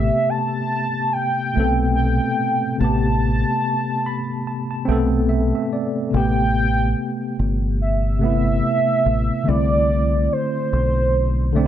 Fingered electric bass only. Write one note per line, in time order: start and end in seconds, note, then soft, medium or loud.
1.57 2.19 B1 medium
2.81 3.43 A1 loud
4.89 5.51 B1 medium
6.14 6.93 A1 loud
7.39 8.60 G1 medium
9.06 9.29 A1 medium
9.48 10.27 C2 loud
10.73 11.67 B1 loud